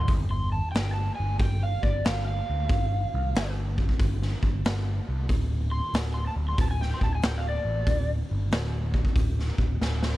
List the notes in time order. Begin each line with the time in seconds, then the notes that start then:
0.08 G1, kick, open hi-hat
0.31 C6
0.52 A5
0.72 G1 G5, open hi-hat
0.76 snare
0.94 A5
1.15 G#5
1.20 G1
1.39 G1 G5, kick, open hi-hat
1.63 F5
1.83 G1 D5, kick
2.05 G1 F5, snare, open hi-hat
2.27 F5
2.50 D2
2.69 G1, kick, open hi-hat
3.14 C2
3.34 G1, snare, open hi-hat
3.78 kick
3.89 kick
3.99 G1, kick, open hi-hat
4.22 snare
4.43 G1, kick
4.65 G1, snare, open hi-hat
5.09 C2
5.29 D1, kick, open hi-hat
5.71 C6
5.94 D1, snare, open hi-hat
6.14 C6
6.27 A5
6.36 D1
6.49 C6
6.58 D1 A5, kick, open hi-hat
6.71 G#5
6.81 G5, snare
6.94 C6
7.01 D1 A5, kick
7.15 G#5
7.22 D1 G5, snare, open hi-hat
7.37 F5
7.49 D5
7.65 A1
7.87 D1, kick, open hi-hat
8.31 G1
8.51 D1, snare, open hi-hat
8.94 kick
9.05 kick
9.16 D1, kick, open hi-hat
9.39 snare
9.58 D1, kick
9.81 D1, snare
10.03 snare